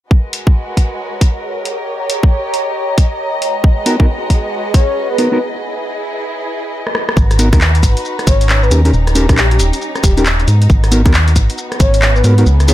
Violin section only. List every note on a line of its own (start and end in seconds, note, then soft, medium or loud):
0.11 1.64 G#3 medium
0.11 1.64 F#4 medium
0.11 3.38 A#4 medium
0.11 1.64 B4 medium
0.11 7.13 D#5 medium
1.65 3.40 G4 medium
1.65 3.40 C#5 medium
3.42 5.38 G#3 medium
3.42 5.38 F#4 medium
3.42 7.13 B4 medium
3.42 5.38 A#5 medium
5.40 7.15 E4 medium
5.40 7.15 G#4 medium
7.17 12.42 D#4 medium
7.17 8.70 F#4 medium
7.17 8.70 B4 medium
7.17 12.42 A#5 medium
8.71 10.46 C#4 medium
8.71 10.46 G4 medium
10.48 12.74 B3 medium
10.48 12.44 F#4 medium
12.46 12.74 D#4 medium
12.46 12.74 E4 medium
12.46 12.74 G#4 medium